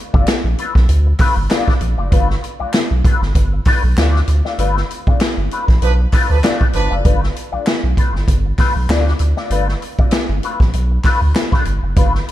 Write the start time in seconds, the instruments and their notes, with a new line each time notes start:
0.13 analog synth bass G1, clean electric guitar A3 D4 F4 D5, kick
0.27 muted clean electric guitar stroke, snare, clap, closed hi-hat
0.44 analog synth bass A#1
0.57 clean electric guitar A3 D4 F4 B4, closed hi-hat
0.75 analog synth bass B1, muted clean electric guitar stroke, kick, snare
0.88 analog synth bass D2, muted clean electric guitar stroke, closed hi-hat
1.06 muted clean electric guitar stroke
1.18 clean electric guitar A3 D4 F4 B4, kick, snare, clap, open hi-hat
1.36 analog synth bass G1, muted clean electric guitar stroke
1.50 clean electric guitar A3 D4 F4 D5, snare, clap, closed hi-hat
1.68 kick, snare
1.81 analog synth bass A#1, muted clean electric guitar stroke, closed hi-hat
1.98 analog synth bass F#1, clean electric guitar A3 D4 F4 D5
2.11 analog synth bass G1, clean electric guitar A3 D4 F4 B4, kick, closed hi-hat
2.29 muted clean electric guitar stroke, snare
2.43 muted clean electric guitar stroke, closed hi-hat
2.59 analog synth bass B1, clean electric guitar A3 D4 F4 D5
2.73 muted clean electric guitar stroke, snare, clap, closed hi-hat
2.91 analog synth bass B1
3.04 clean electric guitar A3 D4 F4 B4, kick, closed hi-hat
3.21 analog synth bass G1, muted clean electric guitar stroke, snare
3.35 analog synth bass G1, muted clean electric guitar stroke, kick, closed hi-hat
3.53 muted clean electric guitar stroke
3.65 clean electric guitar A3 D4 F4 B4, kick, snare, clap, open hi-hat
3.83 analog synth bass B1, muted clean electric guitar stroke
3.97 analog synth bass D2, clean electric guitar A3 D4 F4 D5, snare, clap, closed hi-hat
4.16 snare
4.28 analog synth bass D2, muted clean electric guitar stroke, closed hi-hat
4.45 clean electric guitar A3 D4 F4 D5, snare
4.58 analog synth bass G1, clean electric guitar A3 D4 F4 B4, closed hi-hat
4.76 muted clean electric guitar stroke, snare
4.89 muted clean electric guitar stroke, closed hi-hat
5.07 analog synth bass G1, clean electric guitar A3 D4 F4 D5, kick
5.20 snare, clap, closed hi-hat
5.37 analog synth bass G1
5.51 clean electric guitar A3 D4 F4 B4, closed hi-hat
5.68 analog synth bass A#1, muted clean electric guitar stroke, kick, snare
5.82 analog synth bass B1, horn section F3 D4 B4, muted clean electric guitar stroke, closed hi-hat
5.99 muted clean electric guitar stroke
6.12 clean electric guitar A3 D4 F4 B4, kick, snare, clap, open hi-hat
6.30 analog synth bass D2, horn section F3 D4 B4, muted clean electric guitar stroke
6.43 clean electric guitar A3 D4 F4 D5, snare, clap, closed hi-hat
6.61 kick
6.73 analog synth bass G1, horn section F3 D4 B4, muted clean electric guitar stroke, closed hi-hat
6.90 analog synth bass F#1, clean electric guitar A3 D4 F4 D5
7.04 analog synth bass G1, clean electric guitar A3 D4 F4 B4, kick, closed hi-hat
7.21 muted clean electric guitar stroke, snare
7.35 muted clean electric guitar stroke, closed hi-hat
7.52 analog synth bass B1, clean electric guitar A3 D4 F4 D5
7.65 muted clean electric guitar stroke, snare, clap, closed hi-hat
7.84 analog synth bass B1
7.97 clean electric guitar A3 D4 F4 B4, kick, closed hi-hat
8.14 analog synth bass G1, muted clean electric guitar stroke, snare
8.27 analog synth bass G1, muted clean electric guitar stroke, kick, closed hi-hat
8.45 muted clean electric guitar stroke
8.58 clean electric guitar A3 D4 F4 B4, kick, snare, clap, open hi-hat
8.75 analog synth bass B1, muted clean electric guitar stroke
8.89 analog synth bass D2, clean electric guitar A3 D4 F4 D5, snare, clap, closed hi-hat
9.08 snare
9.19 analog synth bass D2, muted clean electric guitar stroke, closed hi-hat
9.37 clean electric guitar A3 D4 F4 D5, snare
9.50 analog synth bass G1, clean electric guitar A3 D4 F4 B4, closed hi-hat
9.68 muted clean electric guitar stroke, snare
9.81 muted clean electric guitar stroke, closed hi-hat
9.99 analog synth bass G1, clean electric guitar A3 D4 F4 D5, kick
10.11 muted clean electric guitar stroke, snare, clap, closed hi-hat
10.29 analog synth bass G1
10.43 clean electric guitar A3 D4 F4 B4, closed hi-hat
10.60 analog synth bass A#1, muted clean electric guitar stroke, kick, snare
10.73 analog synth bass B1, muted clean electric guitar stroke, closed hi-hat
10.91 muted clean electric guitar stroke
11.03 clean electric guitar A3 D4 F4 B4, kick, snare, clap, open hi-hat
11.21 analog synth bass D2, muted clean electric guitar stroke
11.35 muted clean electric guitar stroke, snare, clap, closed hi-hat
11.52 clean electric guitar A3 D4 F4 B4, kick, snare
11.65 analog synth bass G1, muted clean electric guitar stroke, closed hi-hat
11.83 analog synth bass F#1, muted clean electric guitar stroke
11.96 analog synth bass G1, clean electric guitar A3 D4 F4 B4, kick, closed hi-hat
12.14 muted clean electric guitar stroke, snare
12.27 muted clean electric guitar stroke, closed hi-hat